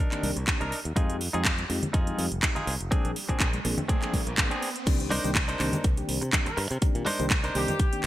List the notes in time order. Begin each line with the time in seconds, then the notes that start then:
0.00 D4 D#4 A#4
0.12 D#3 A#3 C4 D4 G4, clap, closed hi-hat
0.23 C2, open hi-hat, high conga, shaker
0.36 C2, closed hi-hat, shaker
0.47 D#3 A#3 C4 D4 G4, kick, clap, closed hi-hat
0.60 C2 D4 D#4 A#4, closed hi-hat
0.72 muted fingered electric bass stroke, open hi-hat
0.85 D#2, closed hi-hat
0.96 F2 F3 G#3 C4 D#4 F4 G4 G#4, kick, closed hi-hat, riser, high conga, shaker
1.10 closed hi-hat, shaker
1.21 open hi-hat
1.33 F2 F3 G#3 C4 D#4 F4 G4 G#4, closed hi-hat
1.45 kick, clap, closed hi-hat
1.58 closed hi-hat, high conga, shaker
1.69 F2 F3 G#3 C4 D#4 G4, muted clean electric guitar stroke, open hi-hat, shaker
1.83 closed hi-hat, low conga, shaker
1.93 F2 D#4 F4 G#4, kick, closed hi-hat
2.07 F3 G#3 C4 D#4 G4, closed hi-hat, shaker
2.18 F2, open hi-hat, high conga, shaker
2.32 F1, closed hi-hat, shaker
2.43 F3 G#3 C4 D#4 G4, kick, clap, closed hi-hat
2.55 D#4 F4 G#4, closed hi-hat, low conga
2.67 C2, open hi-hat
2.80 F1, closed hi-hat
2.91 F3 A#3 C4 D4 G#4, muted fingered electric bass stroke, kick, closed hi-hat, high conga, shaker
3.05 A#1, closed hi-hat, shaker
3.16 open hi-hat, shaker
3.29 A#1 F3 A#3 C4 D4 G#4, kick, closed hi-hat
3.40 kick, clap, closed hi-hat
3.54 closed hi-hat, high conga, shaker
3.64 A#1 F3 A#3 C4 D4 G#4, muted clean electric guitar stroke, open hi-hat, shaker
3.78 closed hi-hat, low conga, shaker
3.88 C4 D4 G#4, kick, closed hi-hat
4.02 F3 A#3 C4 D4 G#4, clap, closed hi-hat, shaker
4.13 A#1, kick, open hi-hat, high conga, shaker
4.27 A#1, closed hi-hat, shaker
4.38 G#1 F3 A#3 C4 D4 G#4, kick, clap, closed hi-hat
4.51 C4 D4 G#4, closed hi-hat, shaker
4.62 open hi-hat, shaker
4.76 closed hi-hat, shaker
4.86 C2 D#3 A#3 C4 D4 G4, kick, closed hi-hat, crash, shaker
5.00 closed hi-hat, shaker
5.10 D4 D#4 A#4 C5, open hi-hat, high conga
5.24 C2 D#3 A#3 C4 D4 G4, closed hi-hat, shaker
5.35 kick, clap, closed hi-hat
5.48 D4 D#4 A#4 C5, closed hi-hat, shaker
5.59 C2 D#3 A#3 C4 D4 G4, clap, open hi-hat
5.73 closed hi-hat, high conga, low conga, shaker
5.84 C2, kick, closed hi-hat, shaker
5.97 D#3 A#3 C4 D4 G4, closed hi-hat, shaker
6.09 C2, open hi-hat
6.21 C3, muted clean electric guitar stroke, closed hi-hat, shaker
6.33 D#3 A#3 C4 D4 G4, kick, clap, closed hi-hat, high conga, shaker
6.46 A#4, muted clean electric guitar stroke, closed hi-hat, low conga, shaker
6.57 G2, muted clean electric guitar stroke, open hi-hat
6.70 C3, muted clean electric guitar stroke, closed hi-hat, shaker
6.81 D#3 A#3 C4 D4 G4, muted fingered electric bass stroke, kick, closed hi-hat, shaker
6.95 A#2, closed hi-hat, shaker
7.06 D4 D#4 A#4 C5, open hi-hat, high conga
7.19 C2 D#3 A#3 C4 D4 G4, closed hi-hat, shaker
7.30 kick, clap, closed hi-hat
7.43 D4 D#4 A#4 C5, closed hi-hat, shaker
7.55 C2 D#3 A#3 C4 D4 G4, open hi-hat
7.68 closed hi-hat, high conga, low conga, shaker
7.79 kick, closed hi-hat, shaker
7.92 D#3 A#3 C4 D4 G4, closed hi-hat, shaker